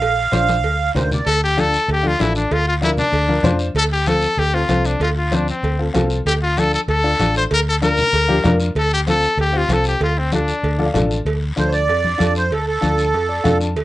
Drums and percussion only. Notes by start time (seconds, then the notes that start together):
0.02 cowbell, high conga, long guiro
0.33 cowbell, high conga, short guiro
0.49 high conga, short guiro
0.63 cowbell, long guiro
0.96 cowbell, low conga, low timbale, short guiro
1.11 low conga, short guiro
1.27 cowbell
1.58 cowbell, high conga, short guiro
1.73 short guiro
1.89 cowbell, long guiro
2.05 high conga
2.20 cowbell, high conga, low timbale, short guiro
2.35 short guiro
2.51 cowbell, long guiro
2.82 cowbell, high conga, short guiro
2.97 low conga, short guiro
3.13 cowbell, long guiro
3.29 high conga
3.44 cowbell, high conga, low conga, short guiro
3.59 short guiro
3.75 cowbell, long guiro
4.06 cowbell, high conga, short guiro
4.21 short guiro
4.38 cowbell, long guiro
4.69 cowbell, high conga, short guiro
4.85 short guiro
5.01 cowbell, long guiro
5.32 cowbell, high conga, short guiro
5.48 short guiro
5.63 cowbell, long guiro
5.94 cowbell, high conga, low conga, low timbale, short guiro
6.10 short guiro
6.26 cowbell, long guiro
6.57 cowbell, high conga, short guiro
6.73 short guiro
6.88 cowbell, long guiro
7.19 cowbell, high conga, short guiro
7.35 short guiro
7.51 cowbell, long guiro
7.82 cowbell, high conga, short guiro
7.97 low conga, short guiro
8.13 cowbell, long guiro
8.30 high conga
8.44 cowbell, high conga, low conga, low timbale, short guiro
8.60 short guiro
8.75 cowbell, long guiro
9.07 cowbell, high conga, short guiro
9.23 short guiro
9.38 cowbell, long guiro
9.69 cowbell, high conga, short guiro
9.84 short guiro
10.00 cowbell, long guiro
10.32 cowbell, high conga, short guiro
10.48 short guiro
10.64 cowbell, long guiro
10.79 high conga
10.95 cowbell, high conga, low conga, short guiro
11.11 short guiro
11.26 cowbell, long guiro
11.57 cowbell, high conga, short guiro
11.72 short guiro
11.88 cowbell, long guiro
12.05 high conga
12.20 cowbell, high conga, short guiro
12.35 short guiro
12.51 cowbell, long guiro
12.82 cowbell, high conga, short guiro
12.98 short guiro
13.14 cowbell, long guiro
13.45 cowbell, high conga, low conga, short guiro
13.61 short guiro
13.76 cowbell, long guiro